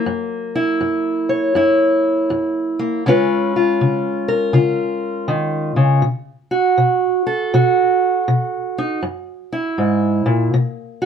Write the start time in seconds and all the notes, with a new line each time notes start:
Already playing: F#3 A#3 C#5
0.06 F#2
0.55 E4
0.81 F#2
1.29 C#5
1.55 F#2 E4
2.30 F#2
2.79 A#3
3.06 C#3 G#3 C#4 F4 B4
3.56 F4
3.81 C#3
4.28 A#4
4.53 C#3 F4
5.28 D#3
5.76 C#3
6.02 B2
6.51 F#4
6.78 B2
7.27 A4
7.54 B2 F#4
8.28 B2
8.78 D#4
9.03 F#2
9.52 E4
9.78 G#2
10.26 A#2
10.54 B2
11.02 F#4